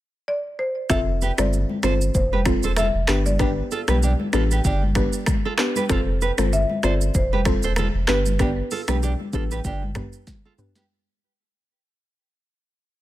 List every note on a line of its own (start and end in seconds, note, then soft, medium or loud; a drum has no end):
0.28 0.57 D5 loud
0.59 0.88 C5 medium
0.89 1.31 F1 loud
0.89 1.34 C4 loud
0.89 1.34 F4 medium
0.89 1.00 F4 medium
0.89 1.34 A4 medium
0.89 0.99 A4 loud
0.89 1.34 C5 loud
0.89 1.35 E5 loud
0.89 finger snap medium
0.89 kick loud
0.89 cross-stick medium
0.89 low conga medium
0.89 shaker medium
1.21 1.31 G4 medium
1.21 1.30 B4 medium
1.21 shaker medium
1.38 1.65 G1 medium
1.38 1.80 C4 medium
1.38 1.80 F4 medium
1.38 1.80 A4 medium
1.38 1.80 C5 medium
1.38 1.85 D5 loud
1.38 finger snap medium
1.38 cross-stick loud
1.38 high conga medium
1.38 shaker medium
1.53 low conga medium
1.53 shaker medium
1.69 high conga medium
1.83 2.10 G1 medium
1.83 2.12 C4 medium
1.83 2.12 F4 medium
1.83 2.13 A4 medium
1.83 1.93 A4 medium
1.83 2.13 C5 medium
1.83 1.93 C5 medium
1.83 finger snap medium
1.83 cross-stick medium
1.83 shaker medium
2.01 shaker medium
2.14 2.56 F1 loud
2.14 2.79 C5 medium
2.14 kick medium
2.14 low conga medium
2.14 shaker medium
2.33 2.40 G4 medium
2.33 2.40 B4 medium
2.33 high conga medium
2.46 2.64 C4 medium
2.46 2.65 F4 medium
2.46 2.65 A4 medium
2.46 2.65 C5 medium
2.46 finger snap medium
2.46 kick loud
2.46 cross-stick medium
2.46 high conga medium
2.46 shaker medium
2.63 2.90 E1 medium
2.63 2.71 A4 medium
2.63 2.71 C5 medium
2.63 shaker medium
2.77 2.87 F4 medium
2.77 2.87 A4 medium
2.77 3.27 E5 loud
2.77 finger snap medium
2.77 cross-stick medium
2.77 high conga medium
2.77 low conga medium
2.77 shaker medium
2.94 3.06 F1 medium
3.08 3.62 G1 loud
3.08 3.27 B3 medium
3.08 3.27 D4 medium
3.08 3.27 G4 medium
3.08 3.18 G4 medium
3.08 3.27 B4 medium
3.08 3.18 B4 medium
3.08 finger snap medium
3.08 cross-stick loud
3.08 clap loud
3.08 shaker medium
3.26 4.47 D5 medium
3.26 high conga medium
3.26 shaker medium
3.39 3.84 B3 loud
3.39 3.84 D4 medium
3.39 3.50 D4 medium
3.39 3.84 G4 medium
3.39 3.49 G4 medium
3.39 3.84 B4 loud
3.39 finger snap medium
3.39 kick loud
3.39 cross-stick medium
3.39 low conga medium
3.39 shaker medium
3.71 3.81 F4 medium
3.71 3.80 A4 medium
3.71 shaker medium
3.88 4.15 B1 medium
3.88 4.30 B3 medium
3.88 4.30 D4 medium
3.88 4.30 G4 medium
3.88 3.96 G4 medium
3.88 4.30 B4 medium
3.88 3.96 B4 medium
3.88 finger snap medium
3.88 cross-stick loud
3.88 high conga medium
3.88 shaker medium
4.03 4.12 D4 medium
4.03 4.11 G4 medium
4.03 low conga medium
4.03 shaker medium
4.20 high conga medium
4.33 4.60 A1 medium
4.33 4.62 B3 medium
4.33 4.62 D4 medium
4.33 4.43 F4 medium
4.33 4.62 G4 medium
4.33 4.43 A4 medium
4.33 4.62 B4 medium
4.33 finger snap medium
4.33 cross-stick medium
4.33 shaker medium
4.51 4.59 G4 medium
4.51 4.58 B4 medium
4.51 shaker medium
4.64 5.06 G1 loud
4.64 4.81 D4 medium
4.64 4.81 G4 medium
4.64 kick medium
4.64 low conga medium
4.64 shaker medium
4.83 high conga medium
4.95 5.14 B3 medium
4.95 5.14 D4 medium
4.95 5.15 G4 medium
4.95 5.15 B4 medium
4.95 finger snap medium
4.95 kick medium
4.95 cross-stick medium
4.95 high conga medium
4.95 shaker soft
5.13 shaker medium
5.26 finger snap medium
5.26 kick medium
5.26 cross-stick medium
5.26 high conga medium
5.26 low conga medium
5.26 shaker medium
5.45 5.53 F4 medium
5.45 5.52 A4 medium
5.58 5.77 B3 medium
5.58 5.77 D4 medium
5.58 5.77 G4 medium
5.58 5.77 B4 medium
5.58 finger snap medium
5.58 cross-stick loud
5.58 clap loud
5.58 shaker medium
5.76 5.84 G4 medium
5.76 5.83 B4 medium
5.76 high conga medium
5.76 shaker medium
5.89 6.31 F1 loud
5.89 6.34 C4 loud
5.89 6.34 F4 medium
5.89 6.00 F4 medium
5.89 6.34 A4 medium
5.89 5.99 A4 loud
5.89 6.34 C5 loud
5.89 finger snap medium
5.89 kick loud
5.89 cross-stick medium
5.89 low conga medium
5.89 shaker medium
6.21 6.31 G4 medium
6.21 6.30 B4 medium
6.21 shaker medium
6.38 6.65 G1 medium
6.38 6.80 C4 medium
6.38 6.80 F4 medium
6.38 6.80 A4 medium
6.38 6.80 C5 medium
6.38 finger snap medium
6.38 cross-stick medium
6.38 high conga medium
6.38 shaker medium
6.53 6.85 E5 loud
6.53 low conga medium
6.53 shaker medium
6.69 high conga medium
6.83 7.10 G1 medium
6.83 7.12 C4 medium
6.83 7.12 F4 medium
6.83 7.12 A4 medium
6.83 6.93 A4 medium
6.83 7.13 C5 medium
6.83 6.93 C5 medium
6.83 7.16 D5 loud
6.83 finger snap medium
6.83 cross-stick medium
6.83 shaker medium
7.01 shaker medium
7.14 7.56 F1 loud
7.14 7.74 C5 medium
7.14 kick medium
7.14 low conga medium
7.14 shaker medium
7.33 7.40 G4 medium
7.33 7.40 B4 medium
7.33 high conga medium
7.45 7.64 C4 medium
7.45 7.64 F4 medium
7.45 7.65 A4 medium
7.45 7.65 C5 medium
7.45 finger snap medium
7.45 kick loud
7.45 cross-stick medium
7.45 high conga medium
7.45 shaker medium
7.63 7.90 E1 medium
7.63 7.72 A4 medium
7.63 7.71 C5 medium
7.63 shaker medium
7.76 7.87 F4 medium
7.76 7.87 A4 medium
7.76 finger snap medium
7.76 cross-stick medium
7.76 high conga medium
7.76 low conga medium
7.76 shaker medium
7.94 8.06 F1 medium
8.08 8.62 G1 loud
8.08 8.27 B3 medium
8.08 8.27 D4 medium
8.08 8.27 G4 medium
8.08 8.18 G4 medium
8.08 8.27 B4 medium
8.08 8.67 B4 loud
8.08 8.18 B4 medium
8.08 finger snap medium
8.08 cross-stick loud
8.08 clap loud
8.08 shaker medium
8.26 high conga medium
8.26 shaker medium
8.39 8.84 B3 loud
8.39 8.84 D4 medium
8.39 8.50 D4 medium
8.39 8.84 G4 medium
8.39 8.49 G4 loud
8.39 8.84 B4 loud
8.39 finger snap medium
8.39 kick loud
8.39 cross-stick medium
8.39 low conga medium
8.39 shaker medium
8.71 8.81 F4 medium
8.71 8.80 A4 medium
8.71 open hi-hat medium
8.71 shaker medium
8.88 9.15 B1 medium
8.88 9.30 B3 medium
8.88 9.30 D4 medium
8.88 9.30 G4 medium
8.88 8.96 G4 medium
8.88 9.30 B4 medium
8.88 8.96 B4 medium
8.88 finger snap medium
8.88 cross-stick loud
8.88 high conga medium
8.88 shaker medium
9.03 9.12 D4 medium
9.03 9.11 G4 medium
9.03 low conga medium
9.03 shaker medium
9.20 high conga medium
9.33 9.60 A1 medium
9.33 9.62 B3 medium
9.33 9.63 D4 medium
9.33 9.43 F4 medium
9.33 9.63 G4 medium
9.33 9.43 A4 medium
9.33 9.63 B4 medium
9.33 kick loud
9.33 shaker medium
9.51 9.59 G4 medium
9.51 9.58 B4 medium
9.51 shaker medium
9.64 10.06 G1 loud
9.64 9.82 D4 medium
9.64 9.81 G4 medium
9.64 kick medium
9.64 low conga medium
9.64 shaker medium
9.83 high conga medium
9.95 10.14 B3 medium
9.95 10.15 D4 medium
9.95 10.15 G4 medium
9.95 10.15 B4 medium
9.95 finger snap medium
9.95 kick medium
9.95 cross-stick medium
9.95 mid tom loud
9.95 high conga medium
9.95 shaker medium
10.13 shaker medium
10.27 kick medium
10.27 snare medium
10.27 high conga medium
10.27 low conga medium
10.27 shaker medium
10.45 10.53 F4 medium
10.45 10.52 A4 medium
10.58 10.77 B3 medium
10.58 10.77 D4 medium
10.58 10.77 G4 medium
10.58 10.77 B4 medium
10.58 mid tom loud
10.58 shaker medium
10.75 10.84 G4 medium
10.75 10.83 B4 medium
10.75 snare medium
10.75 high conga medium
10.75 shaker medium